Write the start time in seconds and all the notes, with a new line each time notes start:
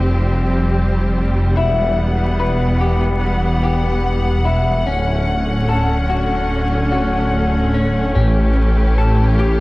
Already playing: F1 F3 G3 C4 G4
1.57 E1 E3 B3 E4 F#5
2.40 B4
2.81 G4
3.64 G4
4.45 E4
4.86 D1 D3 A3 C#4
5.69 A4
6.10 F#4
6.92 F#4
7.74 C#4
8.15 A1 E3 C#4 G4
8.98 A4
9.39 G4